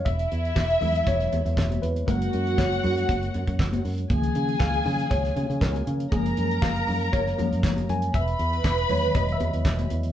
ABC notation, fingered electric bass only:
X:1
M:4/4
L:1/16
Q:1/4=119
K:Gblyd
V:1 name="Fingered electric bass" clef=bass
=E,,,2 =E,,2 E,,,2 E,,2 E,,,2 E,, E,, E,,,2 E,,2 | G,,,2 G,,2 G,,,2 G,,2 G,,,2 G,, G,, G,,,2 G,,2 | D,,2 D,2 D,,2 D,2 D,,2 D, D, D,,2 D,2 | G,,,2 G,,2 G,,,2 G,,2 G,,,2 G,, G,, G,,,2 G,,2 |
=E,,,2 =E,,2 E,,,2 E,,2 E,,,2 E,, E,, E,,,2 E,,2 |]